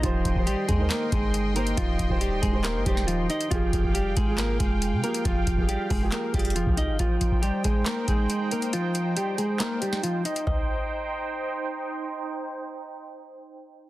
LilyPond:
<<
  \new Staff \with { instrumentName = "Analog synth pad" } { \time 4/4 \key ees \major \tempo 4 = 138 <ees'' g'' c'''>1~ | <ees'' g'' c'''>1 | <f'' g''>1~ | <f'' g''>1 |
<ees' c'' g''>1~ | <ees' c'' g''>1 | <ees' c'' g''>1~ | <ees' c'' g''>1 | }
  \new Staff \with { instrumentName = "Clean electric guitar" } { \time 4/4 \key ees \major <f f'>4 <g g'>8 <aes aes'>8 <bes bes'>8 <aes aes'>4 <bes bes'>8 | <f f'>4 <g g'>8 <aes aes'>8 <bes bes'>8 <g g'>8 <f f'>8 <ees' ees''>8 | <f f'>4 <g g'>8 <aes aes'>8 <bes bes'>8 <aes aes'>4 <bes bes'>8 | <f f'>4 <g g'>8 <aes aes'>8 <bes bes'>8 <g g'>8 <f f'>8 <ees' ees''>8 |
<f f'>4 <g g'>8 <aes aes'>8 <bes bes'>8 <aes aes'>4 <bes bes'>8 | <f f'>4 <g g'>8 <aes aes'>8 <bes bes'>8 <g g'>8 <f f'>8 <ees' ees''>8 | ees''2. r4 | r1 | }
  \new Staff \with { instrumentName = "Grand piano" } { \time 4/4 \key ees \major <ees ees' g' c''>8. <ees ees' g' c''>4 <ees ees' bes' c''>4. r16 <ees ees' g' c''>8~ | <ees ees' g' c''>8 r16 <ees ees' g' c''>4 <ees ees' g' c''>8. <ees ees' g' c''>4~ <ees ees' g' c''>16 r16 | <f f' g' aes'>8. <f f' g' aes'>4 <f f' aes'>4. r16 <f f' g' aes'>8~ | <f f' g' aes'>8 r16 <f f' g' aes'>4 <f f' g' aes'>8. <f f' g' aes'>4~ <f f' g' aes'>16 r16 |
r1 | r1 | r1 | r1 | }
  \new Staff \with { instrumentName = "808-style bass" } { \clef bass \time 4/4 \key ees \major ees,,8 ees,,8 r8 ees,8 r8 g,,4. | ees,,8 ees,,4 ees,,8. g,,16 ees,,4 r8 | f,,8 f,,4 aes,,4 f,,8. c16 r8 | f,,8 f,,8 r8 f,,8 r8 f,,8. c,8 g,,16 |
r1 | r1 | r1 | r1 | }
  \new DrumStaff \with { instrumentName = "Drums" } \drummode { \time 4/4 <hh bd>8 <hh bd>16 bd16 hh8 <hh bd>8 <hc hh sn>8 <hh bd>8 hh8 hh16 hh16 | <hh bd>8 <hh bd>16 bd16 hh8 <hh bd>8 <hc hh sn>8 <hh bd>16 sn16 hh8 hh16 hh16 | <hh bd>8 <hh bd>16 bd16 hh8 <hh bd>8 <hc hh sn>8 <hh bd>8 hh8 hh16 hh16 | <hh bd>8 <hh bd>16 bd16 hh8 <hho bd>8 <hc hh sn>8 <hh bd>32 hh32 hh32 hh32 hh16 bd16 hh8 |
<hh bd>8 <hh bd>16 bd16 hh8 <hh bd>8 <hc hh sn>8 <hh bd>8 hh8 hh16 hh16 | hh8 hh8 hh8 hh8 <hc hh sn>8 hh16 sn16 hh8 hh16 hh16 | <bd tomfh>4 r4 r4 r4 | r4 r4 r4 r4 | }
>>